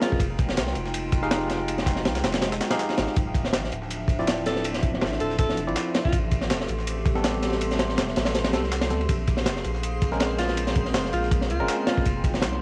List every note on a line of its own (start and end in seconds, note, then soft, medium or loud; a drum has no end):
0.00 0.19 G#3 loud
0.00 0.17 A#3 medium
0.00 0.19 C4 medium
0.00 0.19 C#4 medium
0.00 0.24 F4 loud
0.00 0.17 G#4 medium
0.00 0.19 A#4 loud
0.00 snare loud
0.00 closed hi-hat medium
0.00 ride medium
0.12 kick medium
0.20 0.59 F1 loud
0.20 3.14 G#3 medium
0.20 3.14 D#4 medium
0.20 3.14 F4 medium
0.20 3.14 G5 medium
0.20 kick loud
0.20 closed hi-hat medium
0.20 ride loud
0.39 kick loud
0.39 closed hi-hat medium
0.39 ride medium
0.49 snare soft
0.49 snare medium
0.57 0.74 C2 medium
0.57 snare loud
0.57 closed hi-hat medium
0.57 ride medium
0.67 snare medium
0.75 1.12 F1 medium
0.75 closed hi-hat medium
0.75 ride medium
0.86 snare soft
0.94 closed hi-hat medium
0.94 ride loud
1.12 2.07 F1 loud
1.12 kick medium
1.12 closed hi-hat medium
1.12 ride medium
1.23 2.69 D#4 loud
1.23 2.69 G4 medium
1.23 2.69 G#4 medium
1.23 2.69 F5 loud
1.23 snare soft
1.31 snare loud
1.31 closed hi-hat medium
1.31 ride medium
1.41 ride soft
1.50 snare medium
1.50 closed hi-hat medium
1.50 ride medium
1.68 closed hi-hat medium
1.68 ride loud
1.78 snare soft
1.78 closed hi-hat soft
1.86 kick medium
1.86 snare loud
1.86 closed hi-hat medium
1.86 ride medium
1.96 snare soft
2.05 2.22 C2 medium
2.05 snare loud
2.05 closed hi-hat medium
2.05 ride medium
2.15 snare soft
2.15 snare loud
2.15 closed hi-hat medium
2.24 2.60 F1 medium
2.24 snare loud
2.24 closed hi-hat medium
2.24 ride medium
2.32 snare loud
2.32 closed hi-hat medium
2.32 ride medium
2.42 snare loud
2.42 closed hi-hat medium
2.42 ride medium
2.52 snare loud
2.52 closed hi-hat medium
2.52 ride soft
2.61 snare medium
2.61 snare loud
2.61 closed hi-hat medium
2.61 ride medium
2.71 3.16 D#4 loud
2.71 3.16 G4 loud
2.71 3.16 G#4 loud
2.71 3.16 F5 loud
2.71 snare loud
2.71 closed hi-hat medium
2.71 ride medium
2.79 snare loud
2.79 closed hi-hat medium
2.79 ride soft
2.89 snare soft
2.89 ride medium
2.98 3.07 G#1 medium
2.98 snare loud
2.98 closed hi-hat medium
2.98 ride medium
3.07 snare soft
3.16 3.55 D1 loud
3.16 6.10 F3 medium
3.16 12.62 C4 medium
3.16 6.10 D4 medium
3.16 6.10 E5 medium
3.16 12.62 C6 medium
3.16 kick loud
3.16 closed hi-hat medium
3.16 ride medium
3.35 kick loud
3.35 closed hi-hat medium
3.35 ride medium
3.45 snare medium
3.53 3.71 A1 medium
3.53 snare loud
3.53 closed hi-hat medium
3.53 ride medium
3.64 snare medium
3.72 4.07 D1 medium
3.72 closed hi-hat medium
3.72 ride medium
3.82 snare soft
3.90 closed hi-hat medium
3.90 ride medium
4.08 5.03 D1 loud
4.08 kick loud
4.08 closed hi-hat medium
4.08 ride medium
4.19 5.65 C4 loud
4.19 5.65 E4 loud
4.19 5.65 F4 medium
4.19 5.65 D5 loud
4.19 snare soft
4.27 snare loud
4.27 closed hi-hat medium
4.27 ride loud
4.37 ride soft
4.46 4.69 A4 loud
4.46 snare medium
4.46 closed hi-hat medium
4.46 ride medium
4.56 snare soft
4.64 closed hi-hat medium
4.64 ride loud
4.74 snare soft
4.74 closed hi-hat soft
4.83 kick medium
4.83 closed hi-hat medium
4.83 ride medium
4.94 snare medium
5.01 5.19 A1 medium
5.01 snare loud
5.01 closed hi-hat medium
5.01 ride loud
5.12 snare medium
5.20 5.59 D1 medium
5.20 5.37 A4 loud
5.20 closed hi-hat medium
5.20 ride medium
5.30 snare soft
5.38 5.61 A4 loud
5.38 kick loud
5.38 closed hi-hat medium
5.38 ride medium
5.49 snare medium
5.57 5.69 F1 medium
5.57 closed hi-hat medium
5.57 ride medium
5.67 5.75 A1 loud
5.67 6.12 C4 loud
5.67 6.12 E4 medium
5.67 6.12 F4 medium
5.67 6.12 D5 loud
5.67 ride soft
5.75 snare loud
5.75 closed hi-hat medium
5.75 ride medium
5.94 snare loud
5.94 closed hi-hat medium
5.94 ride medium
6.04 6.17 F4 loud
6.04 kick medium
6.12 6.52 A1 loud
6.12 9.06 A3 medium
6.12 9.06 G4 medium
6.12 9.06 A4 medium
6.12 kick loud
6.12 closed hi-hat medium
6.12 ride medium
6.31 kick medium
6.31 closed hi-hat medium
6.31 ride medium
6.41 snare medium
6.50 6.67 E1 medium
6.50 snare loud
6.50 closed hi-hat medium
6.50 ride medium
6.60 snare medium
6.68 7.04 A1 medium
6.68 closed hi-hat medium
6.68 ride medium
6.78 snare soft
6.87 closed hi-hat medium
6.87 ride medium
7.05 8.00 A1 loud
7.05 kick loud
7.05 closed hi-hat medium
7.05 ride medium
7.15 8.52 G3 loud
7.15 8.52 B3 loud
7.15 8.52 C4 loud
7.15 8.52 A4 loud
7.15 snare soft
7.24 snare loud
7.24 closed hi-hat medium
7.24 ride medium
7.34 ride soft
7.42 snare medium
7.42 closed hi-hat medium
7.42 ride medium
7.52 snare soft
7.61 closed hi-hat medium
7.61 ride loud
7.71 snare soft
7.71 closed hi-hat soft
7.79 snare loud
7.79 closed hi-hat medium
7.79 ride medium
7.89 snare soft
7.98 8.15 E1 medium
7.98 snare loud
7.98 closed hi-hat medium
7.98 ride medium
8.08 snare medium
8.16 8.55 A1 medium
8.16 snare loud
8.16 closed hi-hat medium
8.16 ride medium
8.25 snare loud
8.25 snare soft
8.25 ride medium
8.35 snare loud
8.35 closed hi-hat medium
8.35 ride medium
8.45 snare loud
8.45 ride medium
8.53 8.92 C2 medium
8.53 8.64 G3 medium
8.53 8.64 B3 medium
8.53 8.64 C4 medium
8.53 8.64 A4 medium
8.53 snare loud
8.53 closed hi-hat medium
8.53 ride medium
8.64 snare soft
8.72 snare loud
8.72 closed hi-hat medium
8.72 ride medium
8.82 snare loud
8.82 ride medium
8.90 9.07 D2 medium
8.90 9.01 G3 medium
8.90 9.01 B3 medium
8.90 9.01 C4 medium
8.90 9.01 A4 medium
8.90 snare soft
8.90 closed hi-hat medium
9.01 ride medium
9.09 9.48 A#1 loud
9.09 12.02 A#3 medium
9.09 12.02 G#4 medium
9.09 kick loud
9.09 closed hi-hat medium
9.09 ride loud
9.27 kick loud
9.27 closed hi-hat medium
9.27 ride medium
9.37 snare medium
9.46 9.63 F1 medium
9.46 snare loud
9.46 closed hi-hat medium
9.46 ride medium
9.56 snare medium
9.64 10.00 A#1 medium
9.64 closed hi-hat medium
9.64 ride medium
9.75 snare soft
9.83 closed hi-hat medium
9.83 ride medium
10.02 10.96 A#1 loud
10.02 kick loud
10.02 closed hi-hat medium
10.02 ride medium
10.12 11.58 G#3 loud
10.12 11.58 C4 medium
10.12 11.58 C#4 medium
10.12 11.58 A#4 loud
10.12 snare soft
10.20 snare loud
10.20 closed hi-hat medium
10.20 ride medium
10.31 ride soft
10.38 10.61 F4 loud
10.38 snare medium
10.38 closed hi-hat medium
10.38 ride medium
10.48 snare soft
10.57 closed hi-hat medium
10.57 ride medium
10.67 snare medium
10.67 closed hi-hat soft
10.76 kick loud
10.76 closed hi-hat medium
10.76 ride medium
10.85 snare soft
10.94 11.11 F1 medium
10.94 snare loud
10.94 closed hi-hat medium
10.94 ride medium
11.05 snare medium
11.13 11.51 A#1 medium
11.13 11.30 F4 loud
11.13 closed hi-hat medium
11.13 ride medium
11.23 snare soft
11.31 kick loud
11.31 closed hi-hat medium
11.31 ride medium
11.41 snare medium
11.50 11.61 C#2 medium
11.50 11.79 F4 loud
11.50 closed hi-hat medium
11.50 ride medium
11.60 11.68 F1 loud
11.60 12.05 G#3 loud
11.60 12.05 C4 loud
11.60 12.05 C#4 loud
11.60 12.05 A#4 loud
11.60 ride soft
11.68 snare loud
11.68 closed hi-hat medium
11.68 ride medium
11.87 12.10 F4 loud
11.87 snare loud
11.87 closed hi-hat medium
11.87 ride medium
11.97 kick loud
12.05 12.44 F1 loud
12.05 12.62 G#3 medium
12.05 12.62 D#4 medium
12.05 12.62 F4 medium
12.05 12.62 G5 medium
12.05 kick loud
12.05 closed hi-hat medium
12.05 ride medium
12.24 kick loud
12.24 closed hi-hat medium
12.24 ride medium
12.34 snare soft
12.34 snare medium
12.42 12.59 C2 medium
12.42 snare loud
12.42 closed hi-hat medium
12.42 ride loud
12.52 snare medium